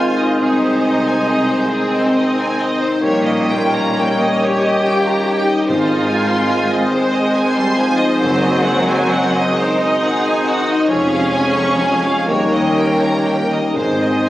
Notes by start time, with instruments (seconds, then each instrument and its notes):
Already playing: harp G#2 C4 D#4 G#4 C5 D#5, bassoon D#3, french horn section G#3 C4, viola section F4, oboe C5, violin section G#5, flute section G#5
0.16 violin section D#5
0.37 double bass section C2, cello section C3, harp C3, viola section D#4, violin section G#4
0.41 violin section G#4
0.60 violin section C5
0.84 harp C4, violin section C5 D#5
1.06 violin section G#5
1.27 violin section G#4 D#5, harp G#4
1.49 violin section C5
1.70 viola section C4, violin section D#4 G#4, harp D#5
1.94 violin section C5
2.15 harp C5, violin section D#5
2.37 violin section G#5
2.58 harp D#4, violin section D#5
2.81 violin section C5
3.00 double bass section A#1, harp A#2, cello section A#2, bassoon D#3, french horn section G3 C#4, viola section A#3, violin section G4 C#5, oboe C#5, flute section G5
3.24 violin section D#5
3.47 violin section F4 G5
3.71 violin section A#5
3.96 violin section D#4 G5, harp G4
4.21 violin section D#5
4.42 violin section C#4 C#5, viola section G4, harp D#5
4.64 violin section D#5
4.85 violin section F4 G5, harp C#5
5.05 violin section A#5
5.24 violin section D#4 G5, harp D#4
5.47 violin section D#5
5.65 cello section G#2, harp G#2, timpani G#2, viola section F4, violin section C5, oboe C5
5.70 double bass section G#1, french horn section G#3 C4, flute section G#5
5.85 violin section D#5
6.08 harp C4, violin section G#5
6.27 violin section C6
6.51 harp G#4, violin section G#5
6.71 violin section D#5
6.90 viola section G#3, violin section C5
6.94 violin section C5, harp D#5
7.13 violin section D#5
7.34 harp C5, violin section G#5
7.54 viola section G3, violin section C6
7.75 viola section F3, harp D#4, violin section G#5
7.97 violin section D#5
8.19 double bass section F#1, cello section F#2, harp F#2, bassoon D#3, viola section F#3, violin section C5
8.40 violin section D#5
8.62 violin section F#5
8.86 violin section G#5
9.10 harp G#4, violin section F#5
9.34 violin section D#5
9.58 viola section D#4, violin section A#4 C5, harp D#5
9.80 violin section D#5
10.02 violin section G#4 F#5, harp C5
10.23 violin section G#5
10.45 harp D#4, violin section F#4 F#5
10.67 violin section D#5
10.87 double bass section F1, cello section F2, harp F2, bassoon F3, french horn section G#3 C#4, viola section C#4, violin section G#4 C#5, oboe C#5, flute section G#5
11.10 violin section F5
11.32 harp C#4, violin section G#5
11.56 violin section C#6
11.80 harp C#4 G#4, violin section G#5
12.04 violin section F5
12.27 cello section D#2, double bass section D#2, bassoon D#3, harp D#3, french horn section G3, viola section A#3, violin section A#4 C#5, flute section G5
12.53 violin section D#5
12.76 harp C#4, violin section G5
13.01 violin section A#5
13.25 harp D#4, violin section G5
13.50 violin section D#5
13.74 double bass section G#1, cello section G#2, timpani G#2, harp G#2, bassoon D#3, french horn section G#3 C4, viola section G#3, violin section C5, oboe C5, flute section G#5
13.78 violin section C5
14.00 violin section D#5
14.26 violin section G#5